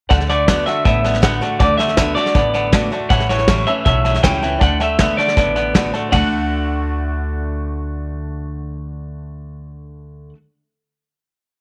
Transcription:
0.09 D2 D3 A3 D5 F#5 A5, kick, snare
0.20 snare
0.28 D3 A3 D5 F#5 A5, snare
0.47 D3 A3 B3 D4 F#4 D5 F#5 A5, kick, snare, hi-hat pedal
0.66 D3 A3 D4 F#4 D5 E5 F#5 A5, snare
0.84 A1 A2 D3 B3 D5 E5 F#5 A5, kick, snare
1.03 D3 B3 D5 F#5 A5, snare
1.14 snare
1.22 D3 A3 B3 D4 F#4 D5 F#5 A5, kick, snare, hi-hat pedal
1.41 D3 A3 D4 F#4 D5 F#5 A5, snare
1.60 D2 D3 A3 D5 F#5 A5, kick, snare
1.78 D3 A3 D5 E5 F#5 A5, snare
1.88 snare
1.96 D3 A3 B3 D4 F#4 D5 F#5 A5, kick, snare, hi-hat pedal
2.15 D3 A3 D4 F#4 D5 F#5 A5, snare
2.26 snare
2.34 A1 A2 D3 B3 D5 F#5 A5, kick, snare
2.53 D3 B3 D5 F#5 A5, snare
2.72 D3 A3 B3 D4 F#4 D5 F#5 A5, kick, snare, hi-hat pedal
2.90 D3 A3 D4 F#4 D5 F#5 A5, snare
3.10 A1 A2 E3 C#5 E5 F#5 A5, kick, snare
3.20 snare
3.29 A2 E3 C#5 E5 A5, snare
3.38 snare
3.48 A2 E3 F#3 G3 C#4 E4 C#5 E5 A5, kick, snare, hi-hat pedal
3.66 A2 E3 C#4 E4 C#5 E5 A5, snare
3.85 B1 E2 A2 F#3 C#5 E5 A5, kick, snare
4.03 A2 F#3 C#5 E5 A5, snare
4.14 snare
4.22 C#2 A2 E3 F#3 G3 C#4 E4 C#5 E5 G5 A5, kick, snare, hi-hat pedal
4.41 A2 E3 E4 C#5 E5 A5, snare
4.45 C#4
4.59 D2 D3 A3 D5 F#5 A5, kick, snare
4.79 D3 A3 D5 E5 F#5 A5, snare
4.98 D3 A3 B3 D4 F#4 D5 F#5 A5, kick, snare, hi-hat pedal
5.17 D3 A3 D5 F#5 A5, snare
5.28 snare
5.36 A1 A2 D3 B3 D5 F#5 A5, kick, snare
5.54 D3 B3 D5 F#5 A5, snare
5.74 D3 A3 B3 D4 F#4 D5 F#5 A5, kick, snare, hi-hat pedal
5.92 D3 A3 D4 F#4 D5 F#5 A5, snare
6.09 D2 D3 D5 F#5, kick, floor tom, open hi-hat
6.13 A3 D4 F#4 A5

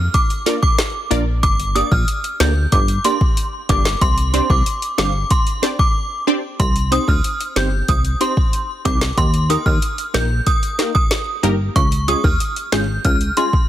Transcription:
0.14 D6, kick, closed hi-hat
0.30 closed hi-hat
0.46 A#3 D4 F4 A#4 D5, snare, closed hi-hat
0.62 D6, kick
0.79 snare, closed hi-hat
1.10 A#1 A#3 D4 F4 A#4 D5, closed hi-hat
1.43 G1 D6, kick, closed hi-hat
1.60 closed hi-hat
1.75 A#3 D4 G4 A#4 D5 D#6, closed hi-hat
1.91 A#1 F6, kick
2.08 closed hi-hat
2.24 closed hi-hat
2.40 D2 A#3 D4 G4 A#4 D5 G6, snare, closed hi-hat
2.72 G1 D6, kick, closed hi-hat
2.88 closed hi-hat
3.04 A#3 D4 G4 A#4 D5 C6, closed hi-hat
3.21 kick
3.37 closed hi-hat
3.69 G1 A#3 D4 G4 A#4 D5 D6, kick, closed hi-hat
3.85 snare
4.01 C2 C6, kick, closed hi-hat
4.18 closed hi-hat
4.33 C4 D4 G4 C5 D5 C6, closed hi-hat
4.50 C2 D6, kick
4.66 closed hi-hat
4.82 closed hi-hat
4.98 G1 C4 D4 G4 C5 F5 D6, snare, closed hi-hat
5.31 C6, kick, closed hi-hat
5.47 closed hi-hat
5.62 C4 D4 G4 C5 D5, snare, closed hi-hat
5.79 D6, kick
6.27 C4 D4 G4 C5 D5
6.60 C2 C6, kick, closed hi-hat
6.76 closed hi-hat
6.91 C4 D#4 G4 C5 D#6, closed hi-hat
7.08 D2 F6, kick
7.24 closed hi-hat
7.40 closed hi-hat
7.56 G1 C4 D#4 G4 C5 G6, snare, closed hi-hat
7.88 C2 D#6, kick, closed hi-hat
8.05 closed hi-hat
8.20 C4 D#4 G4 C5 C6, closed hi-hat
8.37 kick
8.53 closed hi-hat
8.85 C2 C4 D#4 G4 C5 D6, kick, closed hi-hat
9.01 snare
9.18 D#2 C6, kick, closed hi-hat
9.34 closed hi-hat
9.49 A#3 D#4 G4 A#4 D#6, closed hi-hat
9.66 D#2 F6, kick
9.82 closed hi-hat
9.98 closed hi-hat
10.14 A#1 A#3 D#4 G4 A#4 G6, snare, closed hi-hat
10.47 D#6, kick, closed hi-hat
10.63 closed hi-hat
10.78 A#3 D#4 G4 A#4, snare, closed hi-hat
10.95 D#6, kick
11.11 snare, closed hi-hat
11.43 G1 A#3 D#4 G4 A#4, closed hi-hat
11.76 C#2 C#6, kick, closed hi-hat
11.92 closed hi-hat
12.08 G#3 C#4 F4 G#4 D#6, closed hi-hat
12.24 D#2 F6, kick
12.40 closed hi-hat
12.56 closed hi-hat
12.72 G#1 G#3 C#4 F4 G#4 G6, snare, closed hi-hat
13.05 C#2 F6, kick, closed hi-hat
13.21 closed hi-hat
13.37 G#3 C#4 F4 G#4 C6, closed hi-hat
13.53 kick

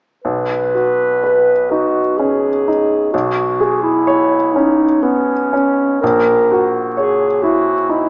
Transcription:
0.24 B1 B4
0.75 F#4
1.24 B4
1.70 D#4 F#4
2.18 C#4 G#4
2.68 D#4
3.12 B1 F#4
3.61 G#4
3.82 E4
4.07 C#5
4.54 C#4 D#4
5.02 B3 C#4
5.53 C#4
6.01 A#1 A#4
6.52 F#4
6.96 G#4 C#5
7.42 E4 F#4
7.89 D#4 E4

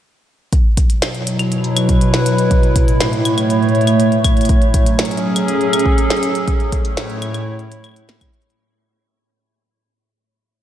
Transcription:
0.53 B2, kick, closed hi-hat
0.59 F#3
0.77 kick, closed hi-hat
0.90 E4, closed hi-hat
1.02 snare, closed hi-hat
1.15 closed hi-hat
1.27 closed hi-hat
1.31 B4
1.39 closed hi-hat, claves
1.52 closed hi-hat
1.64 closed hi-hat
1.77 closed hi-hat, claves
1.89 kick, closed hi-hat
2.01 closed hi-hat
2.14 snare, closed hi-hat
2.26 closed hi-hat
2.38 closed hi-hat
2.51 A2, kick, closed hi-hat
2.55 A3
2.63 closed hi-hat
2.76 kick, closed hi-hat
2.85 C#5, closed hi-hat
3.01 snare, closed hi-hat
3.13 closed hi-hat
3.25 closed hi-hat, claves
3.38 closed hi-hat, claves
3.50 closed hi-hat
3.63 closed hi-hat
3.69 closed hi-hat
3.75 closed hi-hat
3.81 closed hi-hat
3.87 closed hi-hat, claves
4.00 closed hi-hat
4.12 closed hi-hat
4.24 kick, closed hi-hat, claves
4.37 closed hi-hat
4.41 closed hi-hat
4.45 closed hi-hat
4.49 F#3, kick, closed hi-hat
4.62 C#4, closed hi-hat
4.74 kick, closed hi-hat
4.80 G#4
4.86 closed hi-hat
4.99 snare, closed hi-hat
5.05 closed hi-hat
5.11 A4, closed hi-hat
5.17 closed hi-hat
5.36 closed hi-hat, claves
5.48 closed hi-hat
5.61 closed hi-hat
5.73 closed hi-hat, claves
5.79 closed hi-hat
5.86 kick
5.98 closed hi-hat
6.10 snare
6.17 closed hi-hat
6.23 closed hi-hat
6.35 closed hi-hat
6.48 A2, kick, closed hi-hat
6.56 A3
6.60 C#5, closed hi-hat
6.72 kick, closed hi-hat
6.85 closed hi-hat
6.92 E4
6.97 snare, closed hi-hat
7.10 closed hi-hat
7.22 closed hi-hat, claves
7.34 closed hi-hat, claves
7.59 closed hi-hat
7.72 closed hi-hat
7.84 closed hi-hat, claves
7.87 claves
7.89 claves
7.94 closed hi-hat, claves
8.09 snare, closed hi-hat
8.21 kick, closed hi-hat, claves
8.34 closed hi-hat
8.42 closed hi-hat
8.50 closed hi-hat

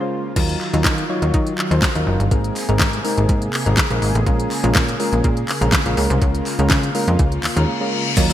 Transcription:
Already playing: C#3 A#3 F4
0.00 G#3 C#4 F4 C5
0.36 D#2 D#3 F#3 D#4 F4 A#4, kick, closed hi-hat, crash
0.49 closed hi-hat
0.61 clap
0.73 D#2 F#3 D#4 F4 A#4, closed hi-hat
0.84 D#3, kick, snare, clap, closed hi-hat
0.98 closed hi-hat
1.09 F#3 D#4 F4 C#5
1.22 D#2, closed hi-hat
1.34 D#3, kick, closed hi-hat
1.47 closed hi-hat
1.58 clap
1.71 D#2 F#3 D#4 F4 C5, closed hi-hat
1.82 kick, snare, clap, closed hi-hat
1.95 D#2 F#3 D#4 F4 A#4, closed hi-hat
2.07 F#1
2.20 G1, closed hi-hat
2.31 G#1 C3 G#3 A#3 C4 D#4 G#4 A#4, kick, closed hi-hat
2.44 closed hi-hat
2.56 clap, open hi-hat
2.68 G#1 G#3 C4 D#4 A#4, closed hi-hat
2.79 G#2, kick, snare, clap, closed hi-hat
2.93 closed hi-hat
3.04 G#3 C4 D#4 A#4, open hi-hat
3.18 G#1, closed hi-hat
3.29 G#2, kick, closed hi-hat
3.42 closed hi-hat
3.53 clap, open hi-hat
3.66 G#1 G#3 C4 D#4 A#4, closed hi-hat
3.77 kick, snare, clap, closed hi-hat
3.90 A#1 G#3 C4 D#4 A#4, closed hi-hat
4.02 G#1, open hi-hat
4.15 A1, closed hi-hat
4.26 A#1 C#3 G#3 C#4 F4 A#4, kick, closed hi-hat
4.40 closed hi-hat
4.51 clap, open hi-hat
4.63 A#1 G#3 C#4 F4 A#4, closed hi-hat
4.75 A#2, kick, snare, clap, closed hi-hat
4.88 closed hi-hat
4.99 G#3 C#4 F4 A#4, open hi-hat
5.12 A#1, closed hi-hat
5.24 A#2, kick, closed hi-hat
5.37 closed hi-hat
5.49 clap, open hi-hat
5.61 A#1 G#3 C#4 F4 A#4, closed hi-hat
5.72 kick, snare, clap, closed hi-hat
5.86 A#1 G#3 C#4 F4 A#4, closed hi-hat
5.97 C#2 G#3 C#4 F4 A#4, open hi-hat
6.10 C2, closed hi-hat
6.22 C#2, kick, closed hi-hat
6.35 closed hi-hat
6.46 clap, open hi-hat
6.59 C#2 G#3 C#4 F4 A#4, closed hi-hat
6.70 C#3, kick, snare, clap, closed hi-hat
6.83 closed hi-hat
6.95 G#3 C#4 F4 A#4, open hi-hat
7.08 F2, closed hi-hat
7.19 C#2, kick, closed hi-hat, reverse cymbal
7.32 closed hi-hat
7.44 D#2, clap, open hi-hat
7.56 D#2 G#3 C#4 F4 A#4, closed hi-hat
7.81 G#3 C#4 F4 A#4
8.16 D#2 D#3 F#3 A#3 D#4 F4 A#4, kick, closed hi-hat, crash, downlifter, shaker
8.30 F#3, closed hi-hat, shaker

